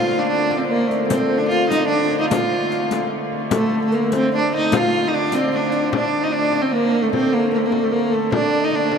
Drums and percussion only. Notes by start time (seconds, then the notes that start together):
0.11 frame drum
0.51 frame drum
0.91 riq, frame drum
1.10 riq, frame drum
1.51 riq, frame drum
1.71 riq, frame drum
2.11 frame drum
2.31 riq, frame drum
2.72 riq, frame drum
2.91 riq, frame drum
3.32 frame drum
3.51 riq, frame drum
3.92 riq, frame drum
4.12 riq, frame drum
4.53 frame drum
4.72 riq, frame drum
5.32 riq, frame drum
5.53 frame drum
5.72 riq, frame drum
5.93 frame drum
6.32 frame drum
6.52 frame drum
6.73 frame drum
6.93 frame drum
7.13 frame drum
7.53 frame drum
7.72 frame drum
7.93 frame drum
8.13 frame drum
8.32 frame drum
8.72 frame drum
8.92 frame drum